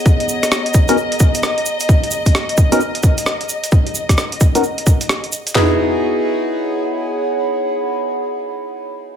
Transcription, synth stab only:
X:1
M:4/4
L:1/16
Q:"Swing 16ths" 1/4=131
K:C#dor
V:1 name="Synth stab"
z6 z [B,CDFA] z8 | z6 z [B,CDFA] z8 | z6 z [B,CDFA] z8 | [B,DEFG]16- |
[B,DEFG]16 |]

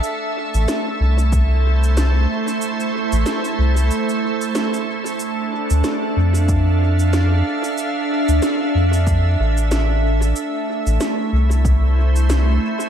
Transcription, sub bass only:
X:1
M:4/4
L:1/16
Q:"Swing 16ths" 1/4=93
K:Dm
V:1 name="Sub bass" clef=bass
z3 A,,, z2 C,,8 z2 | z3 A,,, z2 C,,2 z8 | z3 D,, z2 F,,8 z2 | z3 D,, z2 F,,4 A,,,6 |
z3 A,,, z2 C,,8 z2 |]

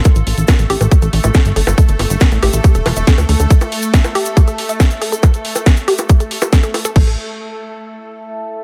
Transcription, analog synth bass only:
X:1
M:4/4
L:1/16
Q:1/4=139
K:none
V:1 name="Analog synth bass" clef=bass
z A,,, A,,, A,,, z A,,, A,,, A,,, z A,,, A,,, A,,, z G,,, G,,, G,,, | z G,,, G,,, G,,, z A,,, A,,, A,,, z E,,, E,,, E,,, z D,, D,, D,, | z16 | z16 |
A,,,2 z12 z2 |]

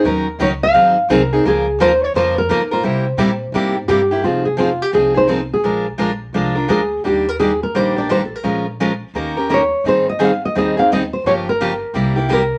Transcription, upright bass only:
X:1
M:4/4
L:1/8
Q:"Swing" 1/4=171
K:Fm
V:1 name="Upright bass" clef=bass
E,,2 D,,2 A,,,2 C,,2 | D,,2 E,,2 F,,2 A,,2 | C,2 B,,2 A,,2 G,,2 | F,,,4 C,,4 |
B,,,2 B,,,2 C,,2 =D,,2 | E,,4 B,,,4 | B,,,4 E,,4 | A,,,4 E,,4 |
G,,,4 C,,4 |]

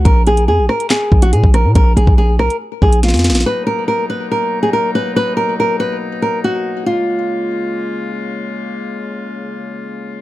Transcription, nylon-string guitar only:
X:1
M:4/4
L:1/16
Q:1/4=141
K:Bbphr
V:1 name="Nylon-string guitar"
B2 A2 A2 B2 A3 G A2 B2 | B2 A2 A2 B2 z2 A2 F4 | =B2 ^A2 A2 B2 A3 _A ^A2 B2 | =B2 ^A2 A2 B2 z2 A2 ^F4 |
F12 z4 | z16 |]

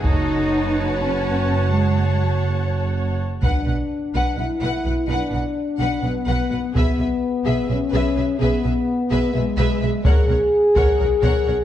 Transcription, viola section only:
X:1
M:7/8
L:1/8
Q:1/4=127
K:F#dor
V:1 name="Viola section"
[cf]6- [cf]- | [cf]6 z | [K:Bdor] B B z B B B B | B B z B B B B |
G G z G G G G | G G z G G G G | ^A A z A A A A |]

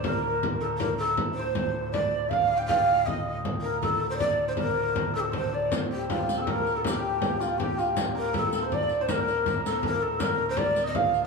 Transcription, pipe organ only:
X:1
M:3/4
L:1/8
Q:1/4=159
K:Dphr
V:1 name="Pipe organ" clef=bass
[D,,A,,]6 | [D,,A,,]6- | [D,,A,,]6- | [D,,A,,]6- |
[D,,A,,]6 | [D,,A,,]6- | [D,,A,,]6- | [D,,A,,]6- |
[D,,A,,]6 | [D,,A,,]6 |]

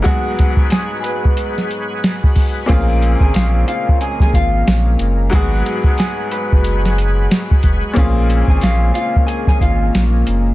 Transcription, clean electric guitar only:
X:1
M:4/4
L:1/16
Q:"Swing 16ths" 1/4=91
K:Bbphr
V:1 name="Clean electric guitar"
[Gg]4 [Aa]2 [cc']6- [cc'] z3 | [Ff]3 [Aa] [Ff]2 [Ff]2 [Aa] [Aa] [Ff]6 | [Gg]4 [Aa]2 [cc']6- [cc'] z3 | [Ff]3 [Aa] [Ff]2 [Ff]2 [Aa] [Aa] [Ff]6 |]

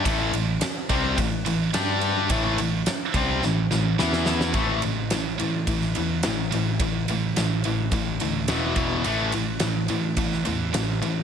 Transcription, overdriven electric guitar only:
X:1
M:4/4
L:1/8
Q:1/4=107
K:Am
V:1 name="Overdriven electric guitar" clef=bass
[A,,E,A,] [A,,E,] z [C,G,C] [A,,E,] [A,,E,] [G,DG]2 | [A,,E,A,] [A,,E,] z [C,G,C] [A,,E,] [A,,E,] [E,B,E]2 | [A,,E,A,] [A,,E,] [A,,E,] [A,,E,] [A,,E,] [A,,E,] [A,,E,] [A,,E,] | [A,,E,] [A,,E,] [A,,E,] [A,,E,] [A,,E,] [A,,E,] [E,,B,,E,] [E,,B,,E,] |
[A,,E,A,] [A,,E,] [A,,E,] [A,,E,] [A,,E,] [A,,E,] [A,,E,] [A,,E,] |]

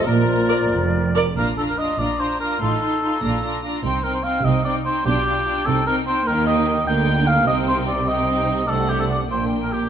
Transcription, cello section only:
X:1
M:6/8
L:1/8
Q:3/8=98
K:Bb
V:1 name="Cello section" clef=bass
B,,3 F,,3 | B,,3 B,,3 | A,,3 B,,3 | C,3 C,3 |
=B,,3 C,3 | [K:Cdor] E,3 D,3 | C,6 | C,3 B,,3 |]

